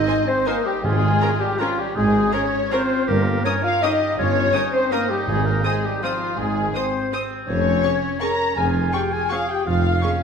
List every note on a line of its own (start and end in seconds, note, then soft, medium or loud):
0.00 0.47 C4 medium
0.00 0.27 D#4 medium
0.00 0.26 D#5 loud
0.00 0.27 D#5 loud
0.00 0.29 D#5 loud
0.08 0.16 D#4 medium
0.08 0.16 C5 medium
0.08 0.16 G#5 medium
0.26 0.46 C4 loud
0.26 0.49 C5 loud
0.26 0.47 C5 loud
0.26 0.47 C5 medium
0.47 0.66 A#3 medium
0.47 0.55 D#4 medium
0.47 0.83 D#4 medium
0.47 0.66 A#4 loud
0.47 0.64 A#4 medium
0.47 0.67 A#4 loud
0.47 0.55 C5 medium
0.47 0.55 G#5 medium
0.65 0.84 G3 loud
0.65 0.71 G4 medium
0.65 0.86 G4 medium
0.65 0.84 G4 loud
0.83 1.14 G#1 medium
0.83 1.15 G#1 medium
0.83 1.14 G#2 medium
0.83 1.37 G#2 loud
0.83 1.39 G#3 loud
0.83 1.61 F4 medium
0.83 1.41 G#4 medium
0.83 1.42 G#4 loud
0.83 1.41 G#4 loud
1.21 1.29 C#4 medium
1.21 1.29 A#4 medium
1.21 1.29 A#5 medium
1.40 1.59 G3 medium
1.40 1.61 G4 medium
1.40 1.60 G4 loud
1.40 1.62 G4 medium
1.59 1.78 F3 medium
1.59 1.96 C#4 medium
1.59 1.68 C#4 medium
1.59 1.81 F4 medium
1.59 1.78 F4 loud
1.59 1.80 F4 medium
1.59 1.68 A#4 medium
1.59 1.67 A#5 medium
1.78 1.86 G3 medium
1.78 1.96 G4 medium
1.78 1.96 G4 loud
1.78 1.97 G4 medium
1.95 2.27 G#1 medium
1.95 2.27 G#1 loud
1.95 2.27 G#2 medium
1.95 2.32 G#3 medium
1.95 2.34 D#4 medium
1.95 2.35 G#4 loud
1.95 2.33 G#4 loud
1.95 2.35 G#4 medium
2.32 2.73 C#4 medium
2.32 2.41 C#4 medium
2.32 2.72 C#4 medium
2.32 2.41 A#4 medium
2.32 2.73 C#5 loud
2.32 2.72 C#5 loud
2.32 2.40 A#5 medium
2.71 3.07 C4 loud
2.71 2.80 C#4 medium
2.71 3.07 F4 loud
2.71 2.80 A#4 medium
2.71 3.10 C5 loud
2.71 3.08 C5 loud
2.71 2.80 A#5 medium
3.07 3.38 G1 medium
3.07 3.38 G2 medium
3.07 3.44 A#3 medium
3.07 3.43 G4 loud
3.07 3.45 A#4 medium
3.07 3.46 A#4 medium
3.07 3.45 A#4 medium
3.44 3.64 C#4 medium
3.44 3.53 C#4 medium
3.44 3.84 A#4 medium
3.44 3.53 A#4 medium
3.44 3.63 C#5 loud
3.44 3.65 C#5 medium
3.44 3.53 C#5 loud
3.44 3.53 D#6 medium
3.63 3.82 F4 loud
3.63 3.84 F5 medium
3.63 3.83 F5 loud
3.82 3.91 C#4 medium
3.82 4.18 D#4 medium
3.82 4.18 G4 medium
3.82 3.91 A#4 medium
3.82 4.18 D#5 medium
3.82 4.19 D#5 loud
3.82 3.91 D#6 medium
4.18 4.48 G1 medium
4.18 4.48 G1 loud
4.18 4.48 G2 medium
4.18 4.73 C#4 loud
4.18 4.55 F4 medium
4.18 4.51 C#5 medium
4.18 4.75 C#5 loud
4.18 4.72 C#5 loud
4.54 4.62 C#4 medium
4.54 6.84 D#4 loud
4.54 4.62 A#4 medium
4.54 4.63 D#6 medium
4.72 4.91 C4 medium
4.72 4.91 C5 medium
4.72 4.93 C5 medium
4.72 4.92 C5 loud
4.92 5.10 A#3 medium
4.92 5.00 C#4 medium
4.92 5.11 A#4 loud
4.92 5.10 A#4 medium
4.92 5.00 A#4 medium
4.92 5.10 A#4 loud
4.92 5.00 D#6 medium
5.10 5.28 G3 medium
5.10 5.29 G4 medium
5.10 5.28 G4 loud
5.10 5.28 G4 medium
5.28 5.58 G#1 medium
5.28 5.58 G#2 medium
5.28 5.80 G#2 medium
5.28 5.45 G#3 medium
5.28 5.47 G#4 medium
5.28 5.46 G#4 loud
5.28 5.34 G#4 loud
5.45 5.65 A#3 medium
5.45 5.66 A#4 loud
5.45 5.64 A#4 medium
5.45 5.52 A#4 medium
5.64 5.84 G#3 medium
5.64 5.73 C4 medium
5.64 5.83 G#4 loud
5.64 5.71 G#4 medium
5.64 5.87 G#4 medium
5.64 5.73 C5 medium
5.64 5.73 D#6 medium
5.84 6.02 G3 medium
5.84 6.03 G4 loud
5.84 6.05 G4 medium
5.84 6.03 G4 medium
6.02 6.38 F3 medium
6.02 6.11 C4 medium
6.02 6.38 F4 loud
6.02 6.40 F4 medium
6.02 6.39 F4 medium
6.02 6.11 C5 medium
6.02 6.12 D#6 medium
6.37 6.68 G#1 medium
6.37 6.68 G#2 medium
6.37 6.74 G#3 medium
6.37 6.74 G#4 loud
6.37 6.74 G#4 medium
6.37 6.75 G#4 loud
6.73 7.11 C4 medium
6.73 6.83 C4 medium
6.73 7.11 C5 medium
6.73 7.12 C5 loud
6.73 6.83 C5 medium
6.73 7.12 C5 medium
6.73 6.83 D#6 medium
7.12 7.20 C4 medium
7.12 7.86 C4 medium
7.12 7.20 C5 medium
7.12 7.21 D#6 medium
7.47 7.77 F1 medium
7.47 7.78 F1 medium
7.47 7.77 F2 medium
7.47 8.17 C#4 medium
7.47 8.23 C#5 medium
7.47 8.22 C#5 medium
7.47 8.17 C#5 loud
7.83 7.92 C#4 medium
7.83 8.56 C#4 medium
7.83 7.92 G#4 medium
7.83 7.91 C#6 medium
8.20 8.30 C#4 medium
8.20 8.30 G#4 medium
8.20 8.57 A#4 medium
8.20 8.55 A#5 medium
8.20 8.56 A#5 loud
8.20 8.59 A#5 medium
8.20 8.28 C#6 medium
8.56 8.87 F1 medium
8.56 8.87 F2 medium
8.56 9.34 F4 medium
8.56 8.93 G#4 medium
8.56 8.95 G#5 medium
8.56 8.93 G#5 medium
8.56 8.94 G#5 medium
8.92 9.02 C#4 medium
8.92 9.13 G4 medium
8.92 9.02 G#4 medium
8.92 9.12 G5 medium
8.92 9.14 G5 medium
8.92 9.01 G5 loud
8.92 9.00 C#6 medium
9.12 9.31 G#4 medium
9.12 9.32 G#5 medium
9.12 9.31 G#5 loud
9.12 9.33 G#5 medium
9.31 9.39 C#4 medium
9.31 9.49 F4 medium
9.31 9.39 G#4 medium
9.31 9.69 G#4 medium
9.31 9.49 F5 medium
9.31 9.49 F5 loud
9.31 9.51 F5 medium
9.31 9.39 C#6 medium
9.49 9.66 G4 medium
9.49 9.68 G5 medium
9.49 9.67 G5 loud
9.49 9.58 G5 medium
9.66 9.97 F1 medium
9.66 9.97 F2 medium
9.66 10.21 F4 medium
9.66 10.05 F4 medium
9.66 10.22 F5 medium
9.66 10.23 F5 medium
9.66 10.21 F5 loud
10.02 10.11 A#3 medium
10.02 10.23 C#4 medium
10.02 10.11 G#4 medium
10.02 10.10 C#6 medium